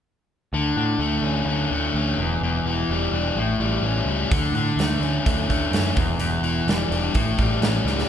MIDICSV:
0, 0, Header, 1, 4, 480
1, 0, Start_track
1, 0, Tempo, 472069
1, 550, Time_signature, 4, 2, 24, 8
1, 8223, End_track
2, 0, Start_track
2, 0, Title_t, "Overdriven electric guitar"
2, 0, Program_c, 0, 29
2, 550, Note_on_c, 0, 50, 63
2, 776, Note_off_c, 0, 50, 0
2, 788, Note_on_c, 0, 50, 63
2, 1023, Note_on_c, 0, 57, 55
2, 1261, Note_on_c, 0, 61, 60
2, 1492, Note_off_c, 0, 50, 0
2, 1505, Note_on_c, 0, 50, 61
2, 1741, Note_off_c, 0, 57, 0
2, 1753, Note_on_c, 0, 57, 54
2, 1976, Note_off_c, 0, 61, 0
2, 1988, Note_on_c, 0, 61, 61
2, 2227, Note_off_c, 0, 50, 0
2, 2229, Note_off_c, 0, 61, 0
2, 2231, Note_off_c, 0, 57, 0
2, 2237, Note_on_c, 0, 40, 59
2, 2462, Note_off_c, 0, 40, 0
2, 2474, Note_on_c, 0, 40, 66
2, 2710, Note_on_c, 0, 52, 58
2, 2961, Note_on_c, 0, 55, 60
2, 3190, Note_on_c, 0, 62, 58
2, 3430, Note_off_c, 0, 52, 0
2, 3430, Note_off_c, 0, 62, 0
2, 3432, Note_off_c, 0, 40, 0
2, 3433, Note_on_c, 0, 45, 60
2, 3435, Note_off_c, 0, 55, 0
2, 3664, Note_on_c, 0, 55, 54
2, 3901, Note_on_c, 0, 61, 61
2, 4138, Note_off_c, 0, 55, 0
2, 4150, Note_on_c, 0, 55, 59
2, 4385, Note_off_c, 0, 61, 0
2, 4390, Note_off_c, 0, 55, 0
2, 4392, Note_off_c, 0, 45, 0
2, 4393, Note_on_c, 0, 50, 68
2, 4621, Note_off_c, 0, 50, 0
2, 4634, Note_on_c, 0, 50, 59
2, 4877, Note_on_c, 0, 57, 64
2, 5111, Note_on_c, 0, 61, 59
2, 5336, Note_off_c, 0, 50, 0
2, 5349, Note_on_c, 0, 50, 61
2, 5572, Note_off_c, 0, 57, 0
2, 5584, Note_on_c, 0, 57, 53
2, 5814, Note_off_c, 0, 61, 0
2, 5826, Note_on_c, 0, 61, 61
2, 6066, Note_on_c, 0, 40, 59
2, 6067, Note_off_c, 0, 57, 0
2, 6069, Note_off_c, 0, 61, 0
2, 6070, Note_off_c, 0, 50, 0
2, 6287, Note_off_c, 0, 40, 0
2, 6300, Note_on_c, 0, 40, 67
2, 6540, Note_on_c, 0, 52, 62
2, 6787, Note_on_c, 0, 55, 60
2, 7027, Note_on_c, 0, 62, 60
2, 7266, Note_off_c, 0, 40, 0
2, 7266, Note_off_c, 0, 52, 0
2, 7267, Note_on_c, 0, 45, 62
2, 7270, Note_off_c, 0, 55, 0
2, 7270, Note_off_c, 0, 62, 0
2, 7508, Note_on_c, 0, 55, 55
2, 7748, Note_on_c, 0, 61, 59
2, 7974, Note_off_c, 0, 55, 0
2, 7987, Note_on_c, 0, 55, 58
2, 8223, Note_off_c, 0, 45, 0
2, 8223, Note_off_c, 0, 55, 0
2, 8223, Note_off_c, 0, 61, 0
2, 8223, End_track
3, 0, Start_track
3, 0, Title_t, "Picked electric bass"
3, 0, Program_c, 1, 34
3, 536, Note_on_c, 1, 38, 74
3, 720, Note_off_c, 1, 38, 0
3, 777, Note_on_c, 1, 45, 76
3, 961, Note_off_c, 1, 45, 0
3, 1001, Note_on_c, 1, 38, 78
3, 1191, Note_off_c, 1, 38, 0
3, 1236, Note_on_c, 1, 38, 73
3, 1428, Note_off_c, 1, 38, 0
3, 1477, Note_on_c, 1, 38, 78
3, 1668, Note_off_c, 1, 38, 0
3, 1737, Note_on_c, 1, 38, 72
3, 1921, Note_off_c, 1, 38, 0
3, 1974, Note_on_c, 1, 38, 77
3, 2159, Note_off_c, 1, 38, 0
3, 2217, Note_on_c, 1, 28, 71
3, 2401, Note_off_c, 1, 28, 0
3, 2448, Note_on_c, 1, 28, 84
3, 2635, Note_off_c, 1, 28, 0
3, 2685, Note_on_c, 1, 28, 73
3, 2873, Note_off_c, 1, 28, 0
3, 2936, Note_on_c, 1, 28, 71
3, 3120, Note_off_c, 1, 28, 0
3, 3170, Note_on_c, 1, 28, 78
3, 3356, Note_off_c, 1, 28, 0
3, 3410, Note_on_c, 1, 33, 71
3, 3596, Note_off_c, 1, 33, 0
3, 3646, Note_on_c, 1, 33, 69
3, 3834, Note_off_c, 1, 33, 0
3, 3880, Note_on_c, 1, 33, 79
3, 4070, Note_off_c, 1, 33, 0
3, 4116, Note_on_c, 1, 37, 75
3, 4308, Note_off_c, 1, 37, 0
3, 4385, Note_on_c, 1, 38, 78
3, 4566, Note_off_c, 1, 38, 0
3, 4597, Note_on_c, 1, 45, 68
3, 4788, Note_off_c, 1, 45, 0
3, 4841, Note_on_c, 1, 38, 81
3, 5031, Note_off_c, 1, 38, 0
3, 5082, Note_on_c, 1, 38, 74
3, 5271, Note_off_c, 1, 38, 0
3, 5350, Note_on_c, 1, 38, 81
3, 5529, Note_off_c, 1, 38, 0
3, 5587, Note_on_c, 1, 38, 74
3, 5767, Note_off_c, 1, 38, 0
3, 5810, Note_on_c, 1, 42, 84
3, 5997, Note_off_c, 1, 42, 0
3, 6059, Note_on_c, 1, 28, 80
3, 6242, Note_off_c, 1, 28, 0
3, 6292, Note_on_c, 1, 28, 85
3, 6478, Note_off_c, 1, 28, 0
3, 6526, Note_on_c, 1, 28, 76
3, 6715, Note_off_c, 1, 28, 0
3, 6767, Note_on_c, 1, 28, 79
3, 6955, Note_off_c, 1, 28, 0
3, 7013, Note_on_c, 1, 28, 76
3, 7199, Note_off_c, 1, 28, 0
3, 7266, Note_on_c, 1, 33, 73
3, 7448, Note_off_c, 1, 33, 0
3, 7504, Note_on_c, 1, 33, 73
3, 7686, Note_off_c, 1, 33, 0
3, 7734, Note_on_c, 1, 33, 83
3, 7920, Note_off_c, 1, 33, 0
3, 7977, Note_on_c, 1, 37, 77
3, 8162, Note_off_c, 1, 37, 0
3, 8223, End_track
4, 0, Start_track
4, 0, Title_t, "Drums"
4, 4388, Note_on_c, 9, 36, 96
4, 4388, Note_on_c, 9, 46, 59
4, 4489, Note_off_c, 9, 36, 0
4, 4490, Note_off_c, 9, 46, 0
4, 4626, Note_on_c, 9, 46, 38
4, 4727, Note_off_c, 9, 46, 0
4, 4869, Note_on_c, 9, 46, 55
4, 4880, Note_on_c, 9, 38, 89
4, 4971, Note_off_c, 9, 46, 0
4, 4982, Note_off_c, 9, 38, 0
4, 5112, Note_on_c, 9, 46, 39
4, 5214, Note_off_c, 9, 46, 0
4, 5351, Note_on_c, 9, 36, 86
4, 5351, Note_on_c, 9, 46, 62
4, 5453, Note_off_c, 9, 36, 0
4, 5453, Note_off_c, 9, 46, 0
4, 5593, Note_on_c, 9, 36, 70
4, 5602, Note_on_c, 9, 46, 45
4, 5694, Note_off_c, 9, 36, 0
4, 5704, Note_off_c, 9, 46, 0
4, 5828, Note_on_c, 9, 46, 68
4, 5839, Note_on_c, 9, 38, 88
4, 5930, Note_off_c, 9, 46, 0
4, 5941, Note_off_c, 9, 38, 0
4, 6065, Note_on_c, 9, 46, 43
4, 6069, Note_on_c, 9, 36, 87
4, 6166, Note_off_c, 9, 46, 0
4, 6171, Note_off_c, 9, 36, 0
4, 6299, Note_on_c, 9, 46, 66
4, 6400, Note_off_c, 9, 46, 0
4, 6547, Note_on_c, 9, 46, 43
4, 6648, Note_off_c, 9, 46, 0
4, 6793, Note_on_c, 9, 46, 55
4, 6804, Note_on_c, 9, 38, 94
4, 6895, Note_off_c, 9, 46, 0
4, 6906, Note_off_c, 9, 38, 0
4, 7036, Note_on_c, 9, 46, 44
4, 7138, Note_off_c, 9, 46, 0
4, 7265, Note_on_c, 9, 46, 55
4, 7271, Note_on_c, 9, 36, 91
4, 7366, Note_off_c, 9, 46, 0
4, 7372, Note_off_c, 9, 36, 0
4, 7508, Note_on_c, 9, 46, 42
4, 7511, Note_on_c, 9, 36, 77
4, 7609, Note_off_c, 9, 46, 0
4, 7612, Note_off_c, 9, 36, 0
4, 7750, Note_on_c, 9, 46, 59
4, 7761, Note_on_c, 9, 38, 102
4, 7851, Note_off_c, 9, 46, 0
4, 7863, Note_off_c, 9, 38, 0
4, 8001, Note_on_c, 9, 38, 48
4, 8102, Note_off_c, 9, 38, 0
4, 8121, Note_on_c, 9, 38, 67
4, 8223, Note_off_c, 9, 38, 0
4, 8223, End_track
0, 0, End_of_file